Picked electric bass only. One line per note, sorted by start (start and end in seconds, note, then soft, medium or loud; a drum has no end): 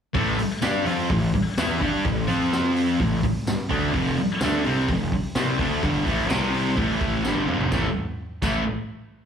0.15 0.37 A1 medium
0.39 muted picked electric bass stroke soft
0.63 0.85 G2 loud
0.85 1.08 F2 loud
1.09 1.32 A1 medium
1.34 muted picked electric bass stroke soft
1.57 1.80 E2 loud
1.81 2.04 G2 medium
2.05 2.27 A1 medium
2.30 2.97 F2 loud
3.00 3.22 A1 medium
3.23 muted picked electric bass stroke soft
3.46 muted picked electric bass stroke soft
3.70 3.93 D2 loud
3.94 4.16 F1 loud
4.18 muted picked electric bass stroke soft
4.41 4.63 D2 loud
4.64 4.86 C2 loud
4.88 5.10 F1 medium
5.12 muted picked electric bass stroke soft
5.36 5.58 C2 loud
5.59 5.81 D2 loud
5.83 6.05 G1 loud
6.06 6.28 A1 medium
6.29 6.73 C2 medium
6.77 7.21 A1 medium
7.24 7.46 G1 loud
7.49 7.71 F1 medium
7.72 7.85 A1 medium
8.42 8.64 A1 loud